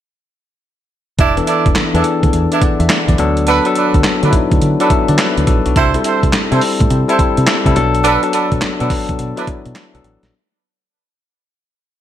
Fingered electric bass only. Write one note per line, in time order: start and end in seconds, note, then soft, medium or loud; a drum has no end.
1.19 1.39 E1 loud
1.66 1.73 E1 medium
1.76 muted fingered electric bass stroke soft
1.94 2.01 E2 loud
2.23 2.30 D2 medium
2.33 2.46 E2 loud
2.62 muted fingered electric bass stroke soft
2.80 2.87 E2 loud
3.08 3.15 E2 loud
3.19 3.59 D2 loud
3.94 4.02 D2 medium
4.23 4.30 D3 loud
4.52 4.59 D2 medium
4.62 4.75 D3 loud
4.90 muted fingered electric bass stroke soft
5.09 5.16 D3 medium
5.38 5.45 D2 medium
5.47 5.60 A#1 medium
5.66 5.73 B1 medium
5.76 5.96 C2 loud
6.23 6.30 C2 medium
6.52 6.59 C3 loud
6.81 6.87 A2 medium
6.90 7.03 C3 loud
7.19 muted fingered electric bass stroke soft
7.38 7.45 C3 medium
7.66 7.73 C3 loud
7.76 8.17 B1 loud
8.52 8.59 B1 medium
8.62 muted fingered electric bass stroke soft
8.81 8.88 B2 loud
9.09 9.16 B1 medium
9.19 9.32 B2 medium
9.48 muted fingered electric bass stroke soft
9.66 9.73 B2 loud
9.95 10.02 B1 medium
10.04 10.18 A1 medium
10.23 10.30 A#1 medium